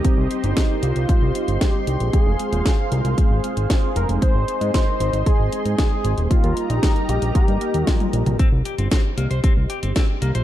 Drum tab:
HH |x-xxx-xxx-xxx-xx|x-xxx-xxx-xxx-xx|x-xxx-xxx-xxx-xx|xxxxxxxxxxxxxxxx|
SD |----o-------o---|----o-------o---|----o-------o---|----o-------o---|
T1 |----------------|----------------|----------------|------------oo--|
T2 |----------------|----------------|----------------|---------------o|
BD |o---o---o---o---|o---o---o---o---|o---o---o---o---|o---o---o---o---|

HH |x-xxx-xxx-xxx-xx|
SD |----o-------o---|
T1 |----------------|
T2 |----------------|
BD |o---o---o---o---|